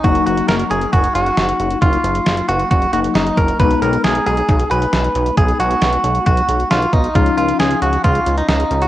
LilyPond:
<<
  \new Staff \with { instrumentName = "Clean electric guitar" } { \time 4/4 \key b \lydian \tempo 4 = 135 fis'8 fis'8 ais'8 gis'8 fis'8 fis'4. | eis'4. fis'8 fis'8 fis'8 dis'8 ais'8 | b'8 ais'8 gis'8 gis'4 b'4. | gis'8 fis'4. fis'4 eis'8 dis'8 |
eis'8 eis'8 gis'8 fis'8 eis'8. dis'16 dis'8. fis'16 | }
  \new Staff \with { instrumentName = "FM electric piano" } { \time 4/4 \key b \lydian <fis ais dis'>1~ | <fis ais dis'>2~ <fis ais dis'>8 <fis ais dis'>4. | <gis b dis'>1~ | <gis b dis'>1 |
<eis cis' dis'>1 | }
  \new Staff \with { instrumentName = "Analog synth bass" } { \clef bass \time 4/4 \key b \lydian fis,,8 fis,,8 fis,,8 fis,,8 fis,,8 fis,,8 fis,,8 fis,,8 | fis,,8 fis,,8 fis,,8 fis,,8 fis,,8 fis,,8 fis,,8 fis,,8 | b,,8 b,,8 b,,8 b,,8 b,,8 b,,8 b,,8 b,,8 | b,,8 b,,8 b,,8 b,,8 b,,8 b,,8 b,,8 b,,8 |
cis,8 cis,8 cis,8 cis,8 cis,8 cis,8 cis,8 cis,8 | }
  \new DrumStaff \with { instrumentName = "Drums" } \drummode { \time 4/4 <hh bd>16 hh16 hh16 hh16 <hh sn>16 hh16 hh16 hh16 <hh bd>16 hh16 hh16 hh16 <hh sn>16 hh16 hh16 hh16 | <hh bd>16 hh16 hh16 hh16 <hh sn>16 hh16 hh16 hh16 <hh bd>16 hh16 hh16 hh16 <hh sn>16 hh16 <hh bd>16 hh16 | <hh bd>16 hh16 hh16 hh16 <hh sn>16 hh16 hh16 hh16 <hh bd>16 hh16 hh16 hh16 <hh sn>16 hh16 hh16 hh16 | <hh bd>16 hh16 hh16 hh16 <hh sn>16 hh16 hh16 hh16 <hh bd>16 hh16 hh16 hh16 <hh sn>16 hh16 <hh bd>16 hh16 |
<hh bd>16 hh16 hh16 hh16 <hh sn>16 hh16 hh16 hh16 <hh bd>16 hh16 hh16 hh16 <hh sn>16 hh16 hh16 hh16 | }
>>